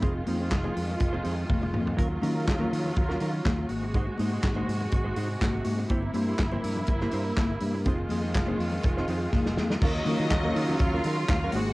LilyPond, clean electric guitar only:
\new Staff \with { instrumentName = "Clean electric guitar" } { \time 4/4 \key ees \dorian \tempo 4 = 123 <c' ees' aes' c''>8 <c' ees' aes' c''>16 <c' ees' aes' c''>16 r16 <c' ees' aes' c''>8 r8 <c' ees' aes' c''>16 <c' ees' aes' c''>8 r4 | <ges des' f' bes'>8 <ges des' f' bes'>16 <ges des' f' bes'>16 r16 <ges des' f' bes'>8 r8 <ges des' f' bes'>16 <ges des' f' bes'>8 r4 | <aes ees' ges' c''>8 <aes ees' ges' c''>16 <aes ees' ges' c''>16 r16 <aes ees' ges' c''>8 r8 <aes ees' ges' c''>16 <aes ees' ges' c''>8 r4 | <bes e' g' c''>8 <bes e' g' c''>16 <bes e' g' c''>16 r16 <bes e' g' c''>8 r8 <bes e' g' c''>16 <bes e' g' c''>8 r4 |
<c' ees' aes' c''>8 <c' ees' aes' c''>16 <c' ees' aes' c''>16 r16 <c' ees' aes' c''>8 r8 <c' ees' aes' c''>16 <c' ees' aes' c''>8 r4 | <ges des' f' bes'>8 <ges des' f' bes'>16 <ges des' f' bes'>16 r16 <ges des' f' bes'>8 r8 <ges des' f' bes'>16 <ges des' f' bes'>8 r16 <ges des' f' bes'>16 <aes ees' ges' c''>8 | }